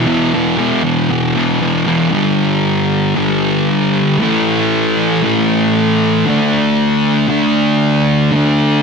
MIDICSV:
0, 0, Header, 1, 2, 480
1, 0, Start_track
1, 0, Tempo, 517241
1, 60, Time_signature, 4, 2, 24, 8
1, 8190, End_track
2, 0, Start_track
2, 0, Title_t, "Distorted electric guitar"
2, 0, Program_c, 0, 30
2, 58, Note_on_c, 0, 40, 95
2, 59, Note_on_c, 0, 47, 101
2, 66, Note_on_c, 0, 52, 113
2, 305, Note_off_c, 0, 40, 0
2, 309, Note_off_c, 0, 47, 0
2, 314, Note_off_c, 0, 52, 0
2, 317, Note_on_c, 0, 40, 84
2, 320, Note_on_c, 0, 47, 84
2, 325, Note_on_c, 0, 52, 87
2, 524, Note_off_c, 0, 40, 0
2, 533, Note_off_c, 0, 52, 0
2, 535, Note_on_c, 0, 40, 76
2, 537, Note_off_c, 0, 47, 0
2, 544, Note_on_c, 0, 52, 86
2, 548, Note_on_c, 0, 47, 90
2, 769, Note_off_c, 0, 40, 0
2, 776, Note_off_c, 0, 47, 0
2, 780, Note_off_c, 0, 52, 0
2, 780, Note_on_c, 0, 40, 79
2, 788, Note_on_c, 0, 47, 84
2, 791, Note_on_c, 0, 52, 93
2, 1008, Note_off_c, 0, 40, 0
2, 1015, Note_off_c, 0, 47, 0
2, 1019, Note_on_c, 0, 40, 96
2, 1025, Note_off_c, 0, 52, 0
2, 1026, Note_on_c, 0, 47, 100
2, 1036, Note_on_c, 0, 52, 109
2, 1249, Note_off_c, 0, 40, 0
2, 1257, Note_off_c, 0, 47, 0
2, 1260, Note_on_c, 0, 40, 99
2, 1261, Note_off_c, 0, 52, 0
2, 1268, Note_on_c, 0, 47, 93
2, 1272, Note_on_c, 0, 52, 99
2, 1481, Note_off_c, 0, 40, 0
2, 1491, Note_off_c, 0, 47, 0
2, 1493, Note_on_c, 0, 40, 80
2, 1496, Note_off_c, 0, 52, 0
2, 1502, Note_on_c, 0, 47, 92
2, 1508, Note_on_c, 0, 52, 90
2, 1714, Note_off_c, 0, 40, 0
2, 1726, Note_on_c, 0, 40, 83
2, 1727, Note_off_c, 0, 47, 0
2, 1732, Note_off_c, 0, 52, 0
2, 1739, Note_on_c, 0, 47, 77
2, 1743, Note_on_c, 0, 52, 93
2, 1955, Note_off_c, 0, 40, 0
2, 1959, Note_on_c, 0, 43, 99
2, 1964, Note_off_c, 0, 47, 0
2, 1967, Note_off_c, 0, 52, 0
2, 1973, Note_on_c, 0, 50, 102
2, 1995, Note_on_c, 0, 55, 108
2, 2912, Note_off_c, 0, 43, 0
2, 2921, Note_off_c, 0, 50, 0
2, 2923, Note_on_c, 0, 43, 84
2, 2932, Note_off_c, 0, 55, 0
2, 2940, Note_on_c, 0, 50, 88
2, 2950, Note_on_c, 0, 55, 89
2, 3876, Note_off_c, 0, 43, 0
2, 3882, Note_off_c, 0, 50, 0
2, 3886, Note_on_c, 0, 45, 90
2, 3890, Note_off_c, 0, 55, 0
2, 3896, Note_on_c, 0, 52, 103
2, 3919, Note_on_c, 0, 57, 107
2, 4838, Note_off_c, 0, 45, 0
2, 4843, Note_off_c, 0, 52, 0
2, 4851, Note_on_c, 0, 45, 78
2, 4866, Note_on_c, 0, 52, 81
2, 4874, Note_off_c, 0, 57, 0
2, 4877, Note_on_c, 0, 57, 96
2, 5801, Note_off_c, 0, 45, 0
2, 5807, Note_on_c, 0, 50, 99
2, 5808, Note_off_c, 0, 52, 0
2, 5826, Note_off_c, 0, 57, 0
2, 5826, Note_on_c, 0, 57, 98
2, 5840, Note_on_c, 0, 62, 103
2, 6753, Note_off_c, 0, 50, 0
2, 6757, Note_on_c, 0, 50, 87
2, 6767, Note_off_c, 0, 57, 0
2, 6770, Note_on_c, 0, 57, 82
2, 6781, Note_off_c, 0, 62, 0
2, 6785, Note_on_c, 0, 62, 86
2, 7710, Note_off_c, 0, 50, 0
2, 7719, Note_off_c, 0, 57, 0
2, 7721, Note_on_c, 0, 50, 102
2, 7730, Note_on_c, 0, 57, 101
2, 7749, Note_off_c, 0, 62, 0
2, 7753, Note_on_c, 0, 62, 102
2, 8190, Note_off_c, 0, 50, 0
2, 8190, Note_off_c, 0, 57, 0
2, 8190, Note_off_c, 0, 62, 0
2, 8190, End_track
0, 0, End_of_file